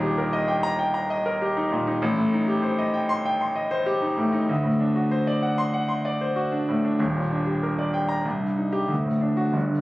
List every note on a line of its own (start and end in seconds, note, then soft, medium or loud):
0.00 1.97 D#1 medium
0.00 1.98 D#2 medium
0.00 1.72 A#2 medium
0.00 0.12 D#4 medium
0.00 0.27 G4 medium
0.18 0.42 A#4 medium
0.33 0.57 D#5 medium
0.48 0.73 G5 medium
0.63 0.88 A#5 loud
0.79 1.04 G5 medium
0.94 1.19 A#5 medium
1.10 1.35 D#5 medium
1.26 1.50 A#4 medium
1.42 1.66 G4 medium
1.57 1.81 D#4 medium
1.72 1.96 A#2 medium
1.87 2.02 D#4 medium
2.02 4.45 A1 medium
2.17 2.42 A2 medium
2.33 2.57 D#4 medium
2.48 2.73 G4 medium
2.63 2.88 C5 medium
2.78 3.03 D#5 medium
2.94 3.19 G5 medium
3.09 3.34 C6 loud
3.26 3.50 G5 medium
3.41 3.65 C6 medium
3.56 3.80 D#5 medium
3.71 3.96 C5 medium
3.86 4.11 G4 medium
4.02 4.27 D#4 medium
4.18 4.43 A2 medium
4.32 4.49 D#4 medium
4.49 6.95 D2 medium
4.64 4.89 A2 medium
4.80 5.05 D4 medium
4.96 5.21 F#4 medium
5.11 5.36 C5 medium
5.27 5.52 D5 medium
5.43 5.67 F#5 medium
5.58 5.83 C6 medium
5.74 5.98 F#5 medium
5.89 6.14 C6 medium
6.05 6.30 D5 medium
6.21 6.46 C5 medium
6.36 6.61 F#4 medium
6.52 6.77 D4 medium
6.69 6.94 A2 medium
6.85 7.00 D4 medium
6.99 8.21 D#1 medium
6.99 8.22 D#2 medium
7.16 7.41 A#2 medium
7.31 7.56 D4 medium
7.47 7.72 G4 medium
7.63 7.88 A#4 medium
7.79 8.03 D5 medium
7.94 8.19 G5 medium
8.09 8.25 A#5 medium
8.25 8.87 C2 medium
8.41 8.66 G2 soft
8.57 8.83 D#4 medium
8.72 8.89 G4 medium
8.88 9.52 D2 medium
9.05 9.32 A2 soft
9.21 9.48 D4 medium
9.37 9.54 F#4 medium
9.53 9.81 G1 medium
9.53 9.81 G2 medium
9.70 9.81 D3 soft